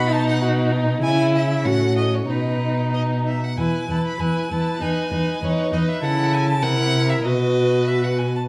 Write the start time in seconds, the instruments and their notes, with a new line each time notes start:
Already playing: cello B2, viola D#4, violin F#4 B5
0.11 violin D#4 A5
0.29 violin F#5
0.41 violin F#4
0.72 violin D#4
1.02 cello C#3, violin E4 G#5, viola E4
1.35 violin E5
1.64 cello A2, violin C#4 F#5, viola F#4
1.98 violin D#5
2.15 violin C#5
2.29 cello B2, violin D#4 B4, viola D#4
2.94 violin D#5
3.27 violin E5
3.44 violin F#5
3.57 cello E2, viola E4, violin B4 G#5
3.89 cello E2, viola E4, violin B4 A5
4.07 violin B5
4.20 cello E2, viola E4, violin B4 G#5
4.50 cello E2, viola E4, violin B4 A5
4.81 cello E2, viola D#4, violin B4 G#5
5.11 cello E2, viola D#4, violin B4
5.42 cello E2, viola D#4, violin B4 C#5
5.72 cello E2, viola D#4, violin B4 D#5
5.88 violin E5
6.03 cello C#3, viola E4, violin A4 F#5
6.33 violin G#5
6.48 violin A5
6.62 cello C3, viola E4, violin A#4 F#5
7.09 violin E5
7.25 cello B2, viola F#4, violin B4 D#5
7.87 violin E5
8.04 violin F#5
8.18 violin G#5
8.36 violin A5